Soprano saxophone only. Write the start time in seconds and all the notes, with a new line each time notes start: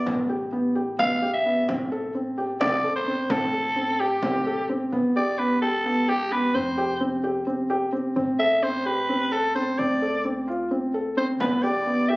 0.99 F5
1.33 E5
2.60 D5
2.96 C5
3.31 A4
4.00 G4
5.16 D5
5.38 B4
5.62 A4
6.09 G4
6.32 B4
6.55 C5
8.39 E5
8.63 C5
8.86 B4
9.32 A4
9.55 C5
9.78 D5
11.18 C5
11.41 B4
11.63 D5
12.09 E5